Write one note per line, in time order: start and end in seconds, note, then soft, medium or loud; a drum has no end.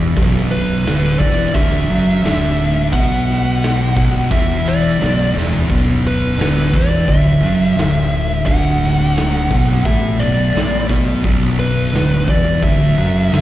0.00 0.14 E1 loud
0.00 0.16 E2 loud
0.00 0.16 E3 loud
0.17 0.82 B0 loud
0.17 0.85 B1 medium
0.17 0.85 B2 medium
0.17 kick loud
0.17 open hi-hat medium
0.51 1.19 B4 medium
0.51 open hi-hat medium
0.85 1.18 D1 medium
0.85 1.19 D2 medium
0.85 1.20 D3 loud
0.85 snare loud
0.85 open hi-hat medium
1.19 1.53 E1 medium
1.19 1.54 E2 medium
1.19 1.55 E3 medium
1.19 1.55 D5 medium
1.19 kick loud
1.19 open hi-hat medium
1.54 1.87 D1 medium
1.54 1.88 D2 medium
1.54 1.89 D3 loud
1.54 2.92 E5 loud
1.54 kick loud
1.54 open hi-hat medium
1.90 2.22 F#1 medium
1.90 2.23 F#2 medium
1.90 2.23 F#3 loud
1.90 open hi-hat soft
2.24 2.89 D1 medium
2.24 2.92 D2 medium
2.24 2.93 D3 loud
2.24 snare medium
2.24 open hi-hat medium
2.59 open hi-hat medium
2.93 3.93 B1 medium
2.93 3.96 B2 loud
2.93 3.96 B3 loud
2.93 4.27 F#5 loud
2.93 kick loud
2.93 open hi-hat medium
3.28 snare soft
3.28 open hi-hat medium
3.62 snare loud
3.62 open hi-hat medium
3.96 4.29 B0 medium
3.96 4.30 B1 medium
3.96 4.30 B2 medium
3.96 kick medium
3.96 open hi-hat medium
4.31 4.96 E1 loud
4.31 4.99 E2 medium
4.31 4.99 E3 loud
4.31 4.67 E5 medium
4.31 kick loud
4.31 open hi-hat medium
4.66 5.32 D5 medium
4.66 open hi-hat medium
5.00 5.33 B0 loud
5.00 5.34 B1 loud
5.00 5.35 B2 loud
5.00 snare medium
5.00 open hi-hat medium
5.35 5.67 E1 loud
5.35 5.69 E2 medium
5.35 5.69 E3 loud
5.35 snare medium
5.53 floor tom medium
5.70 6.35 B0 medium
5.70 6.38 B1 loud
5.70 6.38 B2 medium
5.70 kick loud
5.70 open hi-hat medium
6.05 6.76 B4 medium
6.05 open hi-hat medium
6.38 6.70 D1 medium
6.38 6.72 D2 medium
6.38 6.73 D3 loud
6.38 snare loud
6.38 open hi-hat medium
6.74 7.06 E1 medium
6.74 7.07 E2 medium
6.74 7.07 E3 medium
6.74 7.07 D5 medium
6.74 kick loud
6.74 open hi-hat medium
7.08 7.40 D1 loud
7.08 7.42 D2 medium
7.08 7.42 D3 loud
7.08 8.46 E5 loud
7.08 kick loud
7.08 open hi-hat medium
7.41 7.74 F#1 loud
7.41 7.78 F#2 medium
7.41 7.79 F#3 medium
7.41 open hi-hat medium
7.76 8.42 D1 loud
7.76 8.45 D2 medium
7.76 8.46 D3 loud
7.76 snare loud
7.76 open hi-hat medium
8.12 open hi-hat soft
8.46 9.46 D1 medium
8.46 9.49 D2 loud
8.46 9.50 D3 loud
8.46 9.85 F#5 loud
8.46 kick loud
8.46 open hi-hat medium
8.81 snare soft
8.81 open hi-hat medium
9.16 snare loud
9.16 open hi-hat medium
9.50 9.83 B0 medium
9.50 9.84 B1 medium
9.50 9.84 B2 loud
9.50 kick loud
9.50 open hi-hat medium
9.85 10.17 A1 medium
9.85 10.19 A2 medium
9.85 10.19 A3 loud
9.85 10.21 E5 medium
9.85 kick loud
9.85 open hi-hat medium
10.20 10.52 B0 medium
10.20 10.53 B1 medium
10.20 10.54 B2 loud
10.20 10.85 D5 medium
10.20 open hi-hat medium
10.54 10.86 A1 loud
10.54 10.88 A2 medium
10.54 10.88 A3 loud
10.54 snare medium
10.54 open hi-hat medium
10.89 11.22 B1 loud
10.89 11.22 B2 medium
10.89 11.23 B3 loud
10.89 kick medium
10.89 open hi-hat medium
11.23 11.89 B0 medium
11.23 11.92 B1 medium
11.23 11.92 B2 loud
11.23 kick loud
11.23 open hi-hat medium
11.59 12.29 B4 medium
11.59 open hi-hat medium
11.93 12.26 D1 medium
11.93 12.26 D2 loud
11.93 12.27 D3 loud
11.93 snare loud
11.93 open hi-hat medium
12.28 12.60 E1 medium
12.28 12.61 E2 medium
12.28 12.62 E3 medium
12.28 12.61 D5 medium
12.28 kick loud
12.28 open hi-hat medium
12.63 12.95 D1 loud
12.63 12.97 D2 loud
12.63 12.97 D3 loud
12.63 13.41 E5 medium
12.63 kick loud
12.63 open hi-hat medium
12.97 13.29 F#1 loud
12.97 13.31 F#2 medium
12.97 13.32 F#3 loud
12.97 open hi-hat medium
13.32 13.41 D1 medium
13.32 13.41 D2 loud
13.32 13.41 D3 loud
13.32 snare loud
13.32 open hi-hat medium